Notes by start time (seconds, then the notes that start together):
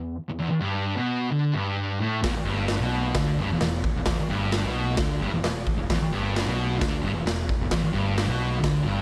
Already playing: E2
0.29 E2
0.39 E2
0.49 muted distorted electric guitar stroke
0.60 G2
0.96 B2
1.32 D3
1.54 G2
2.00 A2
2.22 E1 E2, kick, snare, open hi-hat
2.34 muted fingered electric bass stroke, muted distorted electric guitar stroke
2.45 G1 G2
2.68 snare, open hi-hat
2.79 B1 B2
3.14 D2 D3, kick, snare, open hi-hat
3.36 G1 G2
3.47 E1
3.52 E2
3.60 E1 E2, snare, open hi-hat
3.84 kick
3.94 E1 E2
4.05 E1 E2, kick, snare, open hi-hat
4.17 muted fingered electric bass stroke, muted distorted electric guitar stroke
4.30 G1 G2
4.52 snare, open hi-hat
4.65 B1 B2
4.97 D2 D3, kick, snare, open hi-hat
5.21 G1 G2
5.32 E1 E2
5.44 E1 E2, snare, open hi-hat
5.67 kick
5.77 E1 E2
5.89 E1 E2, kick, snare, open hi-hat
6.00 muted distorted electric guitar stroke, muted fingered electric bass stroke
6.12 G1 G2
6.36 snare, open hi-hat
6.46 B1 B2
6.79 D2 D3, kick, snare, open hi-hat
7.02 G1 G2
7.14 E1 E2
7.26 E1 E2, snare, open hi-hat
7.49 kick
7.59 E1 E2
7.71 E1 E2, kick, snare, open hi-hat
7.81 muted fingered electric bass stroke, muted distorted electric guitar stroke
7.93 G1 G2
8.18 snare, open hi-hat
8.26 B1 B2
8.61 D2 D3, kick, snare, open hi-hat
8.83 G1 G2